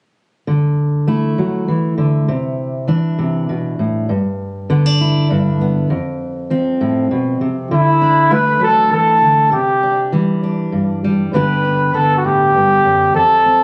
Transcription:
0.47 steel-string acoustic guitar D3
1.07 steel-string acoustic guitar A3 E4
1.38 steel-string acoustic guitar F#3
1.68 steel-string acoustic guitar E3
1.98 steel-string acoustic guitar D3
2.28 steel-string acoustic guitar C3
2.88 steel-string acoustic guitar E3 D4
3.19 steel-string acoustic guitar C3
3.49 steel-string acoustic guitar B2
3.79 steel-string acoustic guitar A2
4.09 steel-string acoustic guitar G2
4.70 steel-string acoustic guitar D3 B3
4.86 steel-string acoustic guitar D4
5.01 steel-string acoustic guitar E4
5.30 steel-string acoustic guitar G2 D4
5.61 steel-string acoustic guitar B3
5.90 steel-string acoustic guitar F2
6.50 steel-string acoustic guitar F3 C4
6.81 steel-string acoustic guitar A2
7.11 steel-string acoustic guitar B2
7.41 steel-string acoustic guitar C3
7.71 steel-string acoustic guitar D3, trumpet E4
8.02 steel-string acoustic guitar D4
8.31 steel-string acoustic guitar A3 D4, trumpet B4
8.60 steel-string acoustic guitar F#3, trumpet A4
8.91 steel-string acoustic guitar E3, trumpet A4
9.22 steel-string acoustic guitar D3
9.52 steel-string acoustic guitar C3, trumpet G4
9.83 steel-string acoustic guitar D4
10.12 steel-string acoustic guitar E3 G3
10.43 steel-string acoustic guitar D4
10.72 steel-string acoustic guitar G2
11.04 steel-string acoustic guitar G3
11.33 steel-string acoustic guitar G2 D3 B3 D4 G4, trumpet B4
11.65 steel-string acoustic guitar D4
11.94 steel-string acoustic guitar D3 B3, trumpet A4
12.17 trumpet F#4
12.24 steel-string acoustic guitar A2, trumpet G4
12.55 steel-string acoustic guitar G2
12.84 steel-string acoustic guitar F#2
13.14 steel-string acoustic guitar F2, trumpet A4
13.46 steel-string acoustic guitar C4

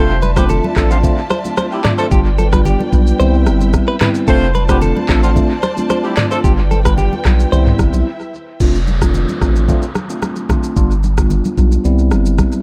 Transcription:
Already playing: sub bass F1, tine electric piano A3 C4 D4 F4, horn section A3 C4 F4 C5, string section F4 D5 E5 A5
0.22 clean electric guitar B4, high conga, shaker
0.36 tine electric piano A3 C4 D4 F4, horn section B3 G4 B4, clean electric guitar C5, kick, cross-stick, high conga, shaker
0.49 clean electric guitar A4, low conga, shaker
0.64 high conga
0.76 sub bass A1, horn section F3 A3 D4 A4, tine electric piano A3 C4 D4 F4, kick, cross-stick, clap, shaker
0.90 horn section D3 F3 C4 F4, shaker
1.03 tine electric piano A3 C4 D4 F4, kick, low conga, shaker
1.30 clean electric guitar C5, cross-stick, high conga, shaker
1.44 tine electric piano A3 C4 D4 F4, high conga, shaker
1.57 clean electric guitar C5, cross-stick, high conga, shaker
1.72 horn section G3 E4 G4
1.84 tine electric piano A3 C4 D4 F4, clean electric guitar D5, cross-stick, clap, mid tom, high conga, low conga, shaker
1.98 horn section F3 A3 D4 A4, clean electric guitar C5, shaker
2.11 sub bass G1, tine electric piano G3 B3 D4 F4, clean electric guitar G4, string section B4 D5 G5, kick, shaker
2.38 clean electric guitar A4, high conga, shaker
2.52 tine electric piano G3 B3 D4 F4, clean electric guitar B4, kick, cross-stick, high conga, shaker
2.65 clean electric guitar G4, low conga, shaker
2.80 high conga
2.92 sub bass B1, tine electric piano G3 B3 D4 F4, kick, shaker
3.07 shaker
3.19 sub bass C2, tine electric piano G3 B3 C4 E4, string section E4 E5, clean electric guitar C5, low conga, shaker
3.46 sub bass G1, cross-stick, high conga, shaker
3.61 high conga, shaker
3.73 kick, cross-stick, high conga, shaker
3.88 clean electric guitar B4
4.00 tine electric piano G3 B3 C4 E4, clean electric guitar B4, cross-stick, clap, mid tom, high conga, low conga, shaker
4.15 shaker
4.28 sub bass F1, tine electric piano A3 C4 D4 F4, horn section A3 C4 F4 C5, string section F4 C5 D5 A5, clean electric guitar A4, kick, shaker
4.55 clean electric guitar B4, high conga, shaker
4.69 tine electric piano A3 C4 D4 F4, horn section B3 G4 B4, clean electric guitar C5, kick, cross-stick, high conga, shaker
4.81 clean electric guitar A4, low conga, shaker
4.97 high conga
5.09 sub bass A1, horn section F3 A3 D4 A4, tine electric piano A3 C4 D4 F4, kick, cross-stick, clap, shaker
5.23 horn section D3 F3 C4 F4, shaker
5.36 tine electric piano A3 C4 D4 F4, kick, low conga, shaker
5.63 clean electric guitar C5, cross-stick, high conga, shaker
5.77 tine electric piano A3 C4 D4 F4, high conga, shaker
5.90 clean electric guitar C5, cross-stick, high conga, shaker
6.04 horn section G3 E4 G4
6.17 tine electric piano A3 C4 D4 F4, clean electric guitar D5, cross-stick, clap, mid tom, high conga, low conga, shaker
6.31 horn section F3 A3 D4 A4, clean electric guitar C5, shaker
6.44 sub bass G1, tine electric piano G3 B3 D4 F4, clean electric guitar G4, string section B4 G5, kick, shaker
6.71 clean electric guitar A4, high conga, shaker
6.85 tine electric piano G3 B3 D4 F4, clean electric guitar B4, kick, cross-stick, high conga, shaker
6.98 clean electric guitar G4, low conga, shaker
7.13 high conga
7.25 sub bass B1, tine electric piano G3 B3 D4 F4, kick, cross-stick, clap, shaker
7.40 shaker
7.52 sub bass C2, tine electric piano G3 B3 C4 E4, string section E4 E5, clean electric guitar C5, low conga, shaker
7.67 mid tom
7.79 sub bass G1, kick, cross-stick, high conga, shaker
7.93 sub bass B1, high conga, shaker
8.60 sub bass F1, tine electric piano A3 C4 D4 F4, kick, crash, downlifter, shaker
8.75 shaker
8.87 high conga, shaker
9.01 tine electric piano A3 C4 D4 F4, kick, cross-stick, high conga, shaker
9.14 low conga, shaker
9.29 high conga, shaker
9.41 sub bass A1, tine electric piano A3 C4 D4 F4, kick, cross-stick, shaker
9.56 shaker
9.68 tine electric piano A3 C4 D4 F4, kick, low conga, shaker
9.82 shaker
9.95 cross-stick, high conga, shaker
10.09 tine electric piano A3 C4 D4 F4, shaker
10.22 cross-stick, high conga, shaker
10.36 shaker
10.49 tine electric piano A3 C4 D4 F4, kick, cross-stick, high conga, low conga, shaker
10.63 shaker
10.76 sub bass G1, tine electric piano G3 B3 D4 F4, kick, shaker
10.91 shaker
11.03 high conga, shaker
11.17 tine electric piano G3 B3 D4 F4, kick, cross-stick, high conga, shaker
11.30 low conga, shaker
11.45 high conga, shaker
11.57 sub bass B1, tine electric piano G3 B3 D4 F4, kick, shaker
11.72 shaker
11.84 sub bass C2, tine electric piano G3 B3 C4 E4, low conga, shaker
11.99 shaker
12.11 sub bass G1, cross-stick, high conga, shaker
12.26 shaker
12.38 kick, cross-stick, high conga, shaker
12.52 shaker

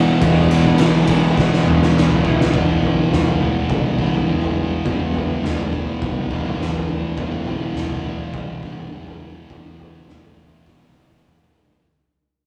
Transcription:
Already playing: fingered electric bass G1, overdriven electric guitar E2 B2 E3, distorted electric guitar E2 B2 E3
0.21 fingered electric bass E1, overdriven electric guitar E2 B2 E3, distorted electric guitar E2 B2 E3, kick, ride
0.50 overdriven electric guitar E2 B2 E3, snare, ride
0.65 kick
0.78 fingered electric bass B1, overdriven electric guitar E2 E3, snare, ride
1.07 overdriven electric guitar E2 B2 E3, kick, ride
1.37 fingered electric bass G1, overdriven electric guitar E2 B2 E3, kick, snare
1.53 snare
1.66 overdriven electric guitar E2 B2 E3, mid tom
1.83 snare
1.96 fingered electric bass B1, overdriven electric guitar E2 B2 E3, snare
2.11 mid tom
2.25 overdriven electric guitar E2 B2 E3, distorted electric guitar E2 B2 E3, kick
2.41 snare
2.53 fingered electric bass E1, distorted electric guitar E2 B2 E3, kick, floor tom
2.83 fingered electric bass B1, floor tom
3.12 fingered electric bass C2, snare, mid tom
3.26 floor tom
3.40 fingered electric bass D2, distorted electric guitar E2 B2 E3
3.69 fingered electric bass C2, kick, floor tom
3.99 distorted electric guitar E2 B2 E3, kick
4.13 floor tom
4.28 fingered electric bass E2, distorted electric guitar E2 B2 E3
4.41 floor tom
4.85 fingered electric bass E2, distorted electric guitar E2 B2 E3, kick, floor tom
5.14 floor tom
5.43 fingered electric bass D2, snare, mid tom
5.58 floor tom
5.72 distorted electric guitar E2 B2 E3, kick
6.02 fingered electric bass C2, kick, floor tom
6.31 distorted electric guitar E2 B2 E3, kick, mid tom
6.45 floor tom, mid tom
6.60 fingered electric bass B1, distorted electric guitar E2 B2 E3, snare, mid tom
6.75 floor tom
6.89 fingered electric bass D2
7.17 fingered electric bass E1, distorted electric guitar E2 B2 E3, kick, floor tom
7.46 fingered electric bass B1, floor tom
7.74 fingered electric bass C2, snare, mid tom
7.90 floor tom
8.04 fingered electric bass D2, distorted electric guitar E2 B2 E3
8.33 fingered electric bass C2, kick, floor tom
8.63 distorted electric guitar E2 B2 E3, kick
8.78 floor tom
8.92 distorted electric guitar E2 B2 E3, fingered electric bass E2
9.07 floor tom
9.49 distorted electric guitar E2 B2 E3, fingered electric bass E2, kick, floor tom
9.79 floor tom
10.08 fingered electric bass D2, snare, mid tom
10.22 floor tom
10.37 distorted electric guitar E2 B2 E3, kick
10.66 fingered electric bass C2, kick, snare
10.83 snare
10.95 distorted electric guitar E2 B2 E3, high tom
11.10 high tom
11.25 fingered electric bass B1, distorted electric guitar E2 B2 E3, mid tom
11.39 mid tom
11.54 fingered electric bass D2, floor tom
11.69 floor tom

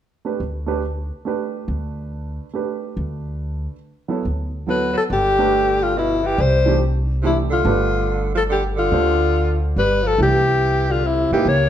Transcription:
0.25 grand piano A3 D4 G4 B4
0.40 upright bass D2
0.66 grand piano A3 D4 G4 B4
1.25 grand piano A3 D4 G4 B4
1.68 upright bass D2
2.53 grand piano A3 D4 G4 B4
2.97 upright bass D2
4.08 grand piano F#3 B3 E4 A4
4.25 upright bass D2
4.67 grand piano F#3 B3 E4 A4, tenor saxophone F#3, alto saxophone B4
4.93 tenor saxophone F#3
4.98 alto saxophone A4
5.10 upright bass G1, tenor saxophone D3, alto saxophone G4
5.39 grand piano A3 D4 G4 B4
5.81 tenor saxophone D3, alto saxophone F4
5.96 tenor saxophone B2, alto saxophone E4
6.23 tenor saxophone E3
6.27 alto saxophone G4
6.38 upright bass C2, tenor saxophone G3, alto saxophone C5
6.66 grand piano E3 A3 D4 G4
7.22 tenor saxophone C3, grand piano E3 A3 D4 G4
7.26 alto saxophone E4
7.50 tenor saxophone D3, alto saxophone F4
7.65 upright bass G1, grand piano A3 D4 G4 B4
8.35 tenor saxophone F3, alto saxophone A4
8.49 tenor saxophone D3, alto saxophone G4
8.77 tenor saxophone D3, alto saxophone F4
8.92 upright bass D2, grand piano A3 D4 G4 C5
9.76 upright bass G1, tenor saxophone G3, alto saxophone B4
10.03 tenor saxophone F3
10.07 alto saxophone A4
10.18 upright bass C2, tenor saxophone E3, grand piano E3 A3 D4 G4
10.23 alto saxophone G4
10.89 tenor saxophone D3, alto saxophone F4
11.04 tenor saxophone C3, alto saxophone E4
11.31 upright bass A#1, tenor saxophone E3, grand piano A#3 D#4 E4 G4, alto saxophone G4
11.45 upright bass C#2, tenor saxophone A#3, alto saxophone C#5

